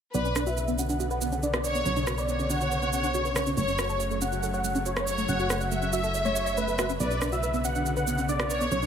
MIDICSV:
0, 0, Header, 1, 7, 480
1, 0, Start_track
1, 0, Key_signature, 2, "minor"
1, 0, Tempo, 428571
1, 161, Time_signature, 4, 2, 24, 8
1, 9927, End_track
2, 0, Start_track
2, 0, Title_t, "Supersaw synth"
2, 0, Program_c, 0, 81
2, 161, Note_on_c, 0, 74, 97
2, 452, Note_off_c, 0, 74, 0
2, 521, Note_on_c, 0, 76, 95
2, 812, Note_off_c, 0, 76, 0
2, 881, Note_on_c, 0, 78, 93
2, 1172, Note_off_c, 0, 78, 0
2, 1240, Note_on_c, 0, 78, 86
2, 1531, Note_off_c, 0, 78, 0
2, 1601, Note_on_c, 0, 74, 94
2, 1989, Note_off_c, 0, 74, 0
2, 2081, Note_on_c, 0, 73, 99
2, 2372, Note_off_c, 0, 73, 0
2, 2441, Note_on_c, 0, 74, 96
2, 2732, Note_off_c, 0, 74, 0
2, 2800, Note_on_c, 0, 78, 93
2, 3091, Note_off_c, 0, 78, 0
2, 3160, Note_on_c, 0, 78, 93
2, 3451, Note_off_c, 0, 78, 0
2, 3521, Note_on_c, 0, 73, 98
2, 3908, Note_off_c, 0, 73, 0
2, 4002, Note_on_c, 0, 73, 96
2, 4292, Note_off_c, 0, 73, 0
2, 4360, Note_on_c, 0, 73, 98
2, 4651, Note_off_c, 0, 73, 0
2, 4721, Note_on_c, 0, 78, 92
2, 5012, Note_off_c, 0, 78, 0
2, 5080, Note_on_c, 0, 78, 91
2, 5371, Note_off_c, 0, 78, 0
2, 5440, Note_on_c, 0, 73, 95
2, 5828, Note_off_c, 0, 73, 0
2, 5921, Note_on_c, 0, 78, 100
2, 6212, Note_off_c, 0, 78, 0
2, 6280, Note_on_c, 0, 78, 96
2, 6571, Note_off_c, 0, 78, 0
2, 6641, Note_on_c, 0, 76, 92
2, 6932, Note_off_c, 0, 76, 0
2, 7001, Note_on_c, 0, 73, 87
2, 7292, Note_off_c, 0, 73, 0
2, 7362, Note_on_c, 0, 71, 92
2, 7749, Note_off_c, 0, 71, 0
2, 7841, Note_on_c, 0, 74, 93
2, 8132, Note_off_c, 0, 74, 0
2, 8202, Note_on_c, 0, 76, 97
2, 8492, Note_off_c, 0, 76, 0
2, 8561, Note_on_c, 0, 78, 95
2, 8852, Note_off_c, 0, 78, 0
2, 8922, Note_on_c, 0, 78, 88
2, 9212, Note_off_c, 0, 78, 0
2, 9282, Note_on_c, 0, 74, 96
2, 9669, Note_off_c, 0, 74, 0
2, 9762, Note_on_c, 0, 73, 95
2, 9927, Note_off_c, 0, 73, 0
2, 9927, End_track
3, 0, Start_track
3, 0, Title_t, "Violin section"
3, 0, Program_c, 1, 48
3, 161, Note_on_c, 1, 71, 88
3, 617, Note_off_c, 1, 71, 0
3, 1841, Note_on_c, 1, 73, 92
3, 2465, Note_off_c, 1, 73, 0
3, 2561, Note_on_c, 1, 73, 90
3, 3905, Note_off_c, 1, 73, 0
3, 4001, Note_on_c, 1, 73, 94
3, 4458, Note_off_c, 1, 73, 0
3, 5681, Note_on_c, 1, 73, 92
3, 6305, Note_off_c, 1, 73, 0
3, 6400, Note_on_c, 1, 76, 93
3, 7745, Note_off_c, 1, 76, 0
3, 7841, Note_on_c, 1, 71, 90
3, 8297, Note_off_c, 1, 71, 0
3, 9522, Note_on_c, 1, 73, 91
3, 9927, Note_off_c, 1, 73, 0
3, 9927, End_track
4, 0, Start_track
4, 0, Title_t, "Synth arpeggio sound"
4, 0, Program_c, 2, 84
4, 162, Note_on_c, 2, 59, 77
4, 248, Note_off_c, 2, 59, 0
4, 282, Note_on_c, 2, 61, 73
4, 316, Note_off_c, 2, 61, 0
4, 401, Note_on_c, 2, 62, 75
4, 487, Note_off_c, 2, 62, 0
4, 521, Note_on_c, 2, 66, 93
4, 556, Note_off_c, 2, 66, 0
4, 641, Note_on_c, 2, 71, 75
4, 676, Note_off_c, 2, 71, 0
4, 760, Note_on_c, 2, 59, 100
4, 847, Note_off_c, 2, 59, 0
4, 881, Note_on_c, 2, 61, 77
4, 915, Note_off_c, 2, 61, 0
4, 1000, Note_on_c, 2, 62, 76
4, 1087, Note_off_c, 2, 62, 0
4, 1120, Note_on_c, 2, 66, 78
4, 1207, Note_off_c, 2, 66, 0
4, 1240, Note_on_c, 2, 71, 98
4, 1327, Note_off_c, 2, 71, 0
4, 1360, Note_on_c, 2, 59, 75
4, 1447, Note_off_c, 2, 59, 0
4, 1480, Note_on_c, 2, 61, 102
4, 1515, Note_off_c, 2, 61, 0
4, 1601, Note_on_c, 2, 62, 80
4, 1636, Note_off_c, 2, 62, 0
4, 1721, Note_on_c, 2, 66, 70
4, 1779, Note_off_c, 2, 66, 0
4, 1841, Note_on_c, 2, 71, 74
4, 1899, Note_off_c, 2, 71, 0
4, 1960, Note_on_c, 2, 59, 76
4, 2018, Note_off_c, 2, 59, 0
4, 2081, Note_on_c, 2, 61, 75
4, 2139, Note_off_c, 2, 61, 0
4, 2200, Note_on_c, 2, 62, 97
4, 2287, Note_off_c, 2, 62, 0
4, 2320, Note_on_c, 2, 66, 76
4, 2407, Note_off_c, 2, 66, 0
4, 2440, Note_on_c, 2, 71, 97
4, 2475, Note_off_c, 2, 71, 0
4, 2560, Note_on_c, 2, 59, 78
4, 2595, Note_off_c, 2, 59, 0
4, 2681, Note_on_c, 2, 61, 76
4, 2738, Note_off_c, 2, 61, 0
4, 2801, Note_on_c, 2, 62, 98
4, 2887, Note_off_c, 2, 62, 0
4, 2921, Note_on_c, 2, 66, 74
4, 2979, Note_off_c, 2, 66, 0
4, 3041, Note_on_c, 2, 71, 73
4, 3076, Note_off_c, 2, 71, 0
4, 3161, Note_on_c, 2, 59, 76
4, 3196, Note_off_c, 2, 59, 0
4, 3281, Note_on_c, 2, 61, 75
4, 3367, Note_off_c, 2, 61, 0
4, 3402, Note_on_c, 2, 62, 76
4, 3436, Note_off_c, 2, 62, 0
4, 3522, Note_on_c, 2, 66, 78
4, 3608, Note_off_c, 2, 66, 0
4, 3642, Note_on_c, 2, 71, 75
4, 3699, Note_off_c, 2, 71, 0
4, 3762, Note_on_c, 2, 59, 98
4, 3848, Note_off_c, 2, 59, 0
4, 3882, Note_on_c, 2, 61, 74
4, 3968, Note_off_c, 2, 61, 0
4, 4002, Note_on_c, 2, 57, 81
4, 4088, Note_off_c, 2, 57, 0
4, 4122, Note_on_c, 2, 61, 75
4, 4156, Note_off_c, 2, 61, 0
4, 4241, Note_on_c, 2, 66, 73
4, 4327, Note_off_c, 2, 66, 0
4, 4361, Note_on_c, 2, 69, 97
4, 4396, Note_off_c, 2, 69, 0
4, 4481, Note_on_c, 2, 73, 80
4, 4516, Note_off_c, 2, 73, 0
4, 4601, Note_on_c, 2, 57, 95
4, 4687, Note_off_c, 2, 57, 0
4, 4721, Note_on_c, 2, 61, 78
4, 4756, Note_off_c, 2, 61, 0
4, 4842, Note_on_c, 2, 66, 77
4, 4928, Note_off_c, 2, 66, 0
4, 4961, Note_on_c, 2, 69, 75
4, 5047, Note_off_c, 2, 69, 0
4, 5082, Note_on_c, 2, 73, 98
4, 5168, Note_off_c, 2, 73, 0
4, 5201, Note_on_c, 2, 57, 73
4, 5287, Note_off_c, 2, 57, 0
4, 5322, Note_on_c, 2, 61, 105
4, 5356, Note_off_c, 2, 61, 0
4, 5442, Note_on_c, 2, 66, 80
4, 5476, Note_off_c, 2, 66, 0
4, 5562, Note_on_c, 2, 69, 69
4, 5619, Note_off_c, 2, 69, 0
4, 5681, Note_on_c, 2, 73, 72
4, 5739, Note_off_c, 2, 73, 0
4, 5802, Note_on_c, 2, 57, 78
4, 5859, Note_off_c, 2, 57, 0
4, 5922, Note_on_c, 2, 61, 76
4, 5979, Note_off_c, 2, 61, 0
4, 6042, Note_on_c, 2, 66, 103
4, 6128, Note_off_c, 2, 66, 0
4, 6162, Note_on_c, 2, 69, 76
4, 6248, Note_off_c, 2, 69, 0
4, 6281, Note_on_c, 2, 73, 101
4, 6316, Note_off_c, 2, 73, 0
4, 6401, Note_on_c, 2, 57, 75
4, 6436, Note_off_c, 2, 57, 0
4, 6521, Note_on_c, 2, 61, 73
4, 6579, Note_off_c, 2, 61, 0
4, 6641, Note_on_c, 2, 66, 100
4, 6727, Note_off_c, 2, 66, 0
4, 6761, Note_on_c, 2, 69, 76
4, 6819, Note_off_c, 2, 69, 0
4, 6881, Note_on_c, 2, 73, 77
4, 6915, Note_off_c, 2, 73, 0
4, 7001, Note_on_c, 2, 57, 81
4, 7036, Note_off_c, 2, 57, 0
4, 7121, Note_on_c, 2, 73, 74
4, 7178, Note_off_c, 2, 73, 0
4, 7241, Note_on_c, 2, 73, 105
4, 7327, Note_off_c, 2, 73, 0
4, 7362, Note_on_c, 2, 57, 83
4, 7448, Note_off_c, 2, 57, 0
4, 7481, Note_on_c, 2, 69, 72
4, 7516, Note_off_c, 2, 69, 0
4, 7602, Note_on_c, 2, 66, 99
4, 7688, Note_off_c, 2, 66, 0
4, 7722, Note_on_c, 2, 61, 102
4, 7756, Note_off_c, 2, 61, 0
4, 7841, Note_on_c, 2, 59, 77
4, 7927, Note_off_c, 2, 59, 0
4, 7962, Note_on_c, 2, 61, 71
4, 7996, Note_off_c, 2, 61, 0
4, 8082, Note_on_c, 2, 62, 76
4, 8168, Note_off_c, 2, 62, 0
4, 8202, Note_on_c, 2, 66, 93
4, 8236, Note_off_c, 2, 66, 0
4, 8322, Note_on_c, 2, 71, 78
4, 8356, Note_off_c, 2, 71, 0
4, 8442, Note_on_c, 2, 59, 100
4, 8528, Note_off_c, 2, 59, 0
4, 8563, Note_on_c, 2, 61, 80
4, 8597, Note_off_c, 2, 61, 0
4, 8682, Note_on_c, 2, 62, 76
4, 8768, Note_off_c, 2, 62, 0
4, 8802, Note_on_c, 2, 66, 77
4, 8888, Note_off_c, 2, 66, 0
4, 8922, Note_on_c, 2, 71, 101
4, 9008, Note_off_c, 2, 71, 0
4, 9043, Note_on_c, 2, 59, 78
4, 9128, Note_off_c, 2, 59, 0
4, 9163, Note_on_c, 2, 61, 102
4, 9197, Note_off_c, 2, 61, 0
4, 9283, Note_on_c, 2, 62, 79
4, 9317, Note_off_c, 2, 62, 0
4, 9404, Note_on_c, 2, 66, 75
4, 9460, Note_off_c, 2, 66, 0
4, 9523, Note_on_c, 2, 71, 74
4, 9579, Note_off_c, 2, 71, 0
4, 9642, Note_on_c, 2, 59, 78
4, 9699, Note_off_c, 2, 59, 0
4, 9763, Note_on_c, 2, 61, 74
4, 9819, Note_off_c, 2, 61, 0
4, 9882, Note_on_c, 2, 62, 96
4, 9927, Note_off_c, 2, 62, 0
4, 9927, End_track
5, 0, Start_track
5, 0, Title_t, "Supersaw synth"
5, 0, Program_c, 3, 81
5, 160, Note_on_c, 3, 49, 81
5, 161, Note_on_c, 3, 50, 76
5, 161, Note_on_c, 3, 59, 69
5, 3963, Note_off_c, 3, 50, 0
5, 3963, Note_off_c, 3, 59, 0
5, 4001, Note_on_c, 3, 54, 77
5, 4001, Note_on_c, 3, 57, 68
5, 7796, Note_off_c, 3, 49, 0
5, 7803, Note_off_c, 3, 54, 0
5, 7803, Note_off_c, 3, 57, 0
5, 7842, Note_on_c, 3, 49, 86
5, 7842, Note_on_c, 3, 50, 76
5, 7842, Note_on_c, 3, 59, 71
5, 9927, Note_off_c, 3, 49, 0
5, 9927, Note_off_c, 3, 50, 0
5, 9927, Note_off_c, 3, 59, 0
5, 9927, End_track
6, 0, Start_track
6, 0, Title_t, "FM bass"
6, 0, Program_c, 4, 39
6, 162, Note_on_c, 4, 35, 92
6, 2058, Note_off_c, 4, 35, 0
6, 2082, Note_on_c, 4, 35, 87
6, 3978, Note_off_c, 4, 35, 0
6, 4002, Note_on_c, 4, 30, 92
6, 5898, Note_off_c, 4, 30, 0
6, 5921, Note_on_c, 4, 30, 89
6, 7817, Note_off_c, 4, 30, 0
6, 7842, Note_on_c, 4, 35, 89
6, 9738, Note_off_c, 4, 35, 0
6, 9762, Note_on_c, 4, 35, 91
6, 9927, Note_off_c, 4, 35, 0
6, 9927, End_track
7, 0, Start_track
7, 0, Title_t, "Drums"
7, 161, Note_on_c, 9, 82, 37
7, 273, Note_off_c, 9, 82, 0
7, 281, Note_on_c, 9, 82, 19
7, 393, Note_off_c, 9, 82, 0
7, 401, Note_on_c, 9, 37, 67
7, 401, Note_on_c, 9, 82, 65
7, 513, Note_off_c, 9, 37, 0
7, 513, Note_off_c, 9, 82, 0
7, 521, Note_on_c, 9, 82, 30
7, 633, Note_off_c, 9, 82, 0
7, 641, Note_on_c, 9, 82, 37
7, 753, Note_off_c, 9, 82, 0
7, 761, Note_on_c, 9, 82, 19
7, 873, Note_off_c, 9, 82, 0
7, 881, Note_on_c, 9, 82, 68
7, 993, Note_off_c, 9, 82, 0
7, 1001, Note_on_c, 9, 82, 29
7, 1113, Note_off_c, 9, 82, 0
7, 1120, Note_on_c, 9, 82, 35
7, 1232, Note_off_c, 9, 82, 0
7, 1241, Note_on_c, 9, 82, 19
7, 1353, Note_off_c, 9, 82, 0
7, 1360, Note_on_c, 9, 82, 64
7, 1472, Note_off_c, 9, 82, 0
7, 1481, Note_on_c, 9, 82, 26
7, 1593, Note_off_c, 9, 82, 0
7, 1600, Note_on_c, 9, 82, 37
7, 1712, Note_off_c, 9, 82, 0
7, 1720, Note_on_c, 9, 37, 68
7, 1720, Note_on_c, 9, 82, 18
7, 1832, Note_off_c, 9, 37, 0
7, 1832, Note_off_c, 9, 82, 0
7, 1840, Note_on_c, 9, 82, 65
7, 1952, Note_off_c, 9, 82, 0
7, 1960, Note_on_c, 9, 82, 27
7, 2072, Note_off_c, 9, 82, 0
7, 2080, Note_on_c, 9, 82, 37
7, 2192, Note_off_c, 9, 82, 0
7, 2200, Note_on_c, 9, 82, 19
7, 2312, Note_off_c, 9, 82, 0
7, 2321, Note_on_c, 9, 37, 74
7, 2321, Note_on_c, 9, 82, 67
7, 2433, Note_off_c, 9, 37, 0
7, 2433, Note_off_c, 9, 82, 0
7, 2441, Note_on_c, 9, 82, 29
7, 2553, Note_off_c, 9, 82, 0
7, 2561, Note_on_c, 9, 82, 37
7, 2673, Note_off_c, 9, 82, 0
7, 2680, Note_on_c, 9, 82, 20
7, 2792, Note_off_c, 9, 82, 0
7, 2801, Note_on_c, 9, 82, 65
7, 2913, Note_off_c, 9, 82, 0
7, 2921, Note_on_c, 9, 82, 29
7, 3033, Note_off_c, 9, 82, 0
7, 3041, Note_on_c, 9, 82, 35
7, 3153, Note_off_c, 9, 82, 0
7, 3161, Note_on_c, 9, 82, 18
7, 3273, Note_off_c, 9, 82, 0
7, 3281, Note_on_c, 9, 82, 68
7, 3393, Note_off_c, 9, 82, 0
7, 3401, Note_on_c, 9, 82, 28
7, 3513, Note_off_c, 9, 82, 0
7, 3522, Note_on_c, 9, 82, 38
7, 3634, Note_off_c, 9, 82, 0
7, 3642, Note_on_c, 9, 82, 17
7, 3754, Note_off_c, 9, 82, 0
7, 3762, Note_on_c, 9, 37, 75
7, 3762, Note_on_c, 9, 82, 64
7, 3874, Note_off_c, 9, 37, 0
7, 3874, Note_off_c, 9, 82, 0
7, 3881, Note_on_c, 9, 82, 30
7, 3993, Note_off_c, 9, 82, 0
7, 4002, Note_on_c, 9, 82, 39
7, 4114, Note_off_c, 9, 82, 0
7, 4122, Note_on_c, 9, 82, 19
7, 4234, Note_off_c, 9, 82, 0
7, 4242, Note_on_c, 9, 37, 77
7, 4242, Note_on_c, 9, 82, 67
7, 4354, Note_off_c, 9, 37, 0
7, 4354, Note_off_c, 9, 82, 0
7, 4362, Note_on_c, 9, 82, 30
7, 4474, Note_off_c, 9, 82, 0
7, 4482, Note_on_c, 9, 82, 39
7, 4594, Note_off_c, 9, 82, 0
7, 4602, Note_on_c, 9, 82, 20
7, 4714, Note_off_c, 9, 82, 0
7, 4721, Note_on_c, 9, 82, 72
7, 4833, Note_off_c, 9, 82, 0
7, 4841, Note_on_c, 9, 82, 28
7, 4953, Note_off_c, 9, 82, 0
7, 4961, Note_on_c, 9, 82, 38
7, 5073, Note_off_c, 9, 82, 0
7, 5081, Note_on_c, 9, 82, 18
7, 5193, Note_off_c, 9, 82, 0
7, 5201, Note_on_c, 9, 82, 65
7, 5313, Note_off_c, 9, 82, 0
7, 5321, Note_on_c, 9, 82, 29
7, 5433, Note_off_c, 9, 82, 0
7, 5441, Note_on_c, 9, 82, 39
7, 5553, Note_off_c, 9, 82, 0
7, 5561, Note_on_c, 9, 37, 74
7, 5561, Note_on_c, 9, 82, 19
7, 5673, Note_off_c, 9, 37, 0
7, 5673, Note_off_c, 9, 82, 0
7, 5681, Note_on_c, 9, 82, 65
7, 5793, Note_off_c, 9, 82, 0
7, 5801, Note_on_c, 9, 82, 30
7, 5913, Note_off_c, 9, 82, 0
7, 5921, Note_on_c, 9, 82, 42
7, 6033, Note_off_c, 9, 82, 0
7, 6042, Note_on_c, 9, 82, 20
7, 6154, Note_off_c, 9, 82, 0
7, 6161, Note_on_c, 9, 37, 79
7, 6161, Note_on_c, 9, 82, 74
7, 6273, Note_off_c, 9, 37, 0
7, 6273, Note_off_c, 9, 82, 0
7, 6281, Note_on_c, 9, 82, 31
7, 6393, Note_off_c, 9, 82, 0
7, 6401, Note_on_c, 9, 82, 41
7, 6513, Note_off_c, 9, 82, 0
7, 6521, Note_on_c, 9, 82, 21
7, 6633, Note_off_c, 9, 82, 0
7, 6641, Note_on_c, 9, 82, 70
7, 6753, Note_off_c, 9, 82, 0
7, 6761, Note_on_c, 9, 82, 29
7, 6873, Note_off_c, 9, 82, 0
7, 6881, Note_on_c, 9, 82, 39
7, 6993, Note_off_c, 9, 82, 0
7, 7001, Note_on_c, 9, 82, 19
7, 7113, Note_off_c, 9, 82, 0
7, 7121, Note_on_c, 9, 82, 70
7, 7233, Note_off_c, 9, 82, 0
7, 7241, Note_on_c, 9, 82, 29
7, 7353, Note_off_c, 9, 82, 0
7, 7361, Note_on_c, 9, 82, 39
7, 7473, Note_off_c, 9, 82, 0
7, 7482, Note_on_c, 9, 82, 20
7, 7594, Note_off_c, 9, 82, 0
7, 7601, Note_on_c, 9, 37, 81
7, 7601, Note_on_c, 9, 82, 70
7, 7713, Note_off_c, 9, 37, 0
7, 7713, Note_off_c, 9, 82, 0
7, 7722, Note_on_c, 9, 82, 30
7, 7834, Note_off_c, 9, 82, 0
7, 7842, Note_on_c, 9, 82, 42
7, 7954, Note_off_c, 9, 82, 0
7, 7962, Note_on_c, 9, 82, 21
7, 8074, Note_off_c, 9, 82, 0
7, 8082, Note_on_c, 9, 37, 78
7, 8082, Note_on_c, 9, 82, 72
7, 8194, Note_off_c, 9, 37, 0
7, 8194, Note_off_c, 9, 82, 0
7, 8202, Note_on_c, 9, 82, 32
7, 8314, Note_off_c, 9, 82, 0
7, 8322, Note_on_c, 9, 82, 42
7, 8434, Note_off_c, 9, 82, 0
7, 8442, Note_on_c, 9, 82, 22
7, 8554, Note_off_c, 9, 82, 0
7, 8562, Note_on_c, 9, 82, 76
7, 8674, Note_off_c, 9, 82, 0
7, 8682, Note_on_c, 9, 82, 31
7, 8794, Note_off_c, 9, 82, 0
7, 8802, Note_on_c, 9, 82, 41
7, 8914, Note_off_c, 9, 82, 0
7, 8922, Note_on_c, 9, 82, 21
7, 9034, Note_off_c, 9, 82, 0
7, 9041, Note_on_c, 9, 82, 68
7, 9153, Note_off_c, 9, 82, 0
7, 9162, Note_on_c, 9, 82, 30
7, 9274, Note_off_c, 9, 82, 0
7, 9282, Note_on_c, 9, 82, 41
7, 9394, Note_off_c, 9, 82, 0
7, 9403, Note_on_c, 9, 37, 73
7, 9403, Note_on_c, 9, 82, 19
7, 9515, Note_off_c, 9, 37, 0
7, 9515, Note_off_c, 9, 82, 0
7, 9522, Note_on_c, 9, 82, 72
7, 9634, Note_off_c, 9, 82, 0
7, 9642, Note_on_c, 9, 82, 32
7, 9754, Note_off_c, 9, 82, 0
7, 9762, Note_on_c, 9, 82, 42
7, 9874, Note_off_c, 9, 82, 0
7, 9882, Note_on_c, 9, 82, 21
7, 9927, Note_off_c, 9, 82, 0
7, 9927, End_track
0, 0, End_of_file